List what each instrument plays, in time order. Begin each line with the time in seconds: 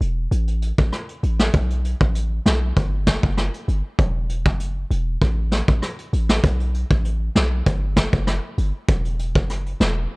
0.01 808-style bass E1, closed hi-hat
0.31 808-style bass A1, closed hi-hat
0.48 closed hi-hat
0.62 closed hi-hat
0.78 808-style bass A1, kick
0.93 cross-stick, closed hi-hat
1.09 closed hi-hat
1.23 808-style bass A1, closed hi-hat
1.39 snare
1.54 808-style bass B1, kick, closed hi-hat
1.70 closed hi-hat
1.84 closed hi-hat
2.01 808-style bass A1, kick
2.15 closed hi-hat
2.46 808-style bass B1, snare, closed hi-hat
2.76 808-style bass G1, kick, closed hi-hat
3.07 kick, snare, closed hi-hat
3.23 808-style bass F#1, kick
3.38 cross-stick, snare, closed hi-hat
3.54 closed hi-hat
3.68 808-style bass G1, closed hi-hat
3.99 808-style bass E1, kick, closed hi-hat
4.29 closed hi-hat
4.46 808-style bass F#1, kick
4.60 closed hi-hat
4.91 808-style bass E1, closed hi-hat
5.21 808-style bass A1, kick, closed hi-hat
5.52 snare, closed hi-hat
5.68 808-style bass A1, kick
5.82 cross-stick, closed hi-hat
5.99 closed hi-hat
6.13 808-style bass A1, closed hi-hat
6.29 snare
6.44 808-style bass B1, kick, closed hi-hat
6.60 closed hi-hat
6.74 closed hi-hat
6.91 808-style bass A1, kick
7.05 closed hi-hat
7.36 808-style bass B1, snare, closed hi-hat
7.66 808-style bass G1, kick, closed hi-hat
7.96 kick, snare, closed hi-hat
8.13 808-style bass F#1, kick
8.27 cross-stick, snare, closed hi-hat
8.58 808-style bass G1, closed hi-hat
8.89 808-style bass E1, kick, closed hi-hat
9.05 closed hi-hat
9.19 closed hi-hat
9.35 808-style bass F#1, kick
9.49 cross-stick, closed hi-hat
9.66 closed hi-hat
9.80 808-style bass E1, snare, closed hi-hat